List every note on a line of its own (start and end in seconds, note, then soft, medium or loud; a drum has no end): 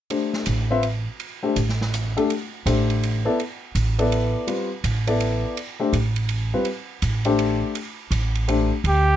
0.10 0.66 A3 soft
0.10 0.66 D4 soft
0.10 0.66 G4 soft
0.10 0.66 C5 soft
0.10 ride soft
0.33 snare soft
0.46 1.05 A1 medium
0.46 hi-hat pedal soft
0.46 ride medium
0.71 0.82 C4 medium
0.71 0.83 F4 medium
0.71 0.83 B4 medium
0.71 0.83 E5 medium
0.83 ride soft
1.20 ride soft
1.43 1.55 A3 medium
1.43 1.55 D4 soft
1.43 1.55 G4 medium
1.43 1.55 C5 medium
1.56 2.15 A1 medium
1.56 hi-hat pedal medium
1.56 ride medium
1.69 snare soft
1.81 snare soft
1.94 hi-hat pedal medium
1.94 ride soft
2.17 2.28 A3 medium
2.17 2.28 D4 medium
2.17 2.28 G4 soft
2.17 2.29 A4 medium
2.17 ride soft
2.30 ride soft
2.66 3.24 A1 medium
2.66 3.21 A3 medium
2.66 3.21 D4 soft
2.66 3.21 G4 medium
2.66 3.21 C5 medium
2.66 hi-hat pedal medium
2.66 ride medium
2.90 ride soft
3.03 ride soft
3.25 3.37 B3 medium
3.25 3.37 E4 medium
3.25 3.37 A4 medium
3.25 3.37 D5 medium
3.40 ride soft
3.75 4.33 A1 medium
3.75 hi-hat pedal medium
3.75 ride medium
3.99 4.45 B3 medium
3.99 4.46 E4 medium
3.99 4.45 A4 medium
3.99 4.46 D5 medium
3.99 ride soft
4.12 ride soft
4.47 4.68 G3 soft
4.47 4.69 C4 soft
4.47 4.69 F4 soft
4.47 4.69 B4 medium
4.47 ride medium
4.84 5.42 A1 medium
4.84 hi-hat pedal medium
4.84 ride medium
5.07 5.54 B3 medium
5.07 5.54 E4 medium
5.07 5.54 A4 medium
5.07 5.54 D5 medium
5.07 ride soft
5.20 ride soft
5.57 ride soft
5.80 5.92 A3 medium
5.80 5.92 D4 medium
5.80 5.92 G4 medium
5.80 5.92 C5 medium
5.93 6.51 A1 medium
5.93 hi-hat pedal soft
5.93 ride medium
6.16 ride soft
6.29 ride medium
6.54 6.65 G3 medium
6.54 6.65 C4 medium
6.54 6.65 F4 soft
6.54 6.65 B4 medium
6.65 ride soft
7.02 7.61 A1 medium
7.02 hi-hat pedal medium
7.02 ride medium
7.25 7.72 A3 medium
7.25 7.73 D4 medium
7.25 7.73 G4 medium
7.25 7.73 C5 medium
7.25 ride soft
7.39 ride soft
7.75 ride soft
8.11 8.69 A1 medium
8.11 hi-hat pedal soft
8.11 ride medium
8.35 ride soft
8.48 8.69 A3 medium
8.48 8.69 D4 medium
8.48 8.69 G4 soft
8.48 8.69 C5 medium
8.48 ride medium
8.84 9.16 D2 medium
8.84 9.16 G4 medium
8.84 ride medium